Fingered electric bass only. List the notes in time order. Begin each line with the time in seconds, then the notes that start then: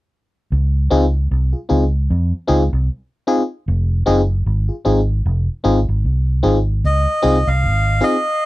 0.52 C#2
0.92 C#2
1.31 C2
1.71 C#2
2.10 F2
2.49 C#2
2.73 C2
3.68 F1
4.07 F#1
4.46 G#1
4.86 G#1
5.26 F1
5.65 G#1
5.89 G#1
6.05 C2
6.44 G#1
6.84 C#2
7.24 C2
7.47 C2
7.63 G#1